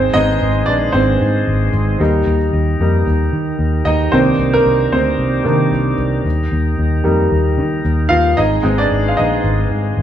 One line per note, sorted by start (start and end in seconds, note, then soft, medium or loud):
0.00 6.21 D#3 medium
0.00 1.98 G#3 medium
0.00 0.13 C4 medium
0.00 1.98 C4 medium
0.00 0.14 C5 medium
0.14 0.36 G#1 medium
0.14 0.90 G#3 soft
0.14 0.90 C4 soft
0.14 0.90 D#4 medium
0.14 0.69 D#5 loud
0.41 0.63 G#1 medium
0.66 0.90 A#1 medium
0.66 0.92 D4 medium
0.66 0.94 D5 medium
0.92 1.16 G#1 medium
0.92 1.70 C4 medium
0.92 1.69 C5 medium
1.21 1.42 G#2 medium
1.47 1.69 G#1 medium
1.73 1.95 G#1 medium
2.00 2.22 D#2 medium
2.00 2.36 G3 soft
2.00 8.33 G3 medium
2.00 8.33 A#3 medium
2.00 2.37 A#3 soft
2.00 2.37 D#4 medium
2.26 2.48 D#2 medium
2.53 2.75 D#2 medium
2.80 3.01 F2 medium
2.80 3.04 G3 soft
2.80 3.04 A#3 soft
2.80 3.05 D#4 soft
3.06 3.28 D#2 medium
3.33 3.55 D#3 medium
3.59 3.81 D#2 medium
3.85 4.07 D#2 medium
3.85 4.11 D#4 medium
3.85 4.13 D#5 medium
4.12 4.34 C2 medium
4.12 6.23 C3 medium
4.12 5.43 D#3 soft
4.12 4.53 A#3 soft
4.12 4.51 C4 medium
4.12 6.23 D4 medium
4.12 5.44 D4 soft
4.12 4.55 C5 medium
4.39 4.61 C2 medium
4.53 4.90 A#3 medium
4.53 4.93 A#4 medium
4.65 4.87 C2 medium
4.92 5.14 D2 medium
4.92 5.95 C4 soft
4.92 5.94 C5 medium
5.19 5.40 C2 medium
5.44 5.67 C3 medium
5.44 5.69 D#3 soft
5.44 5.69 A#3 soft
5.44 5.69 D4 soft
5.72 5.93 C2 medium
5.98 6.20 C2 medium
6.25 6.46 D#2 medium
6.25 10.02 D#3 medium
6.52 6.73 D#2 medium
6.78 7.00 D#2 medium
7.04 7.27 F2 medium
7.04 7.80 G3 soft
7.04 7.80 A#3 soft
7.04 7.80 D#4 soft
7.31 7.59 D#2 medium
7.58 7.79 D#3 medium
7.85 8.06 D#2 medium
8.09 8.33 D#2 medium
8.09 8.16 F4 medium
8.09 8.15 F5 medium
8.37 8.59 G#1 medium
8.37 10.02 G#3 medium
8.37 10.02 C4 medium
8.37 8.63 D#4 medium
8.37 8.80 D#5 medium
8.63 8.86 G#1 medium
8.63 9.39 G#3 medium
8.63 9.39 C4 soft
8.63 9.16 D#4 medium
8.78 9.08 D4 medium
8.78 9.08 D5 medium
8.92 9.13 G#1 medium
9.08 9.16 F5 medium
9.17 9.39 A#1 medium
9.17 10.02 D#4 medium
9.17 10.02 D#5 medium
9.44 9.66 G#1 medium
9.70 9.92 G#2 medium
9.97 10.02 G#1 medium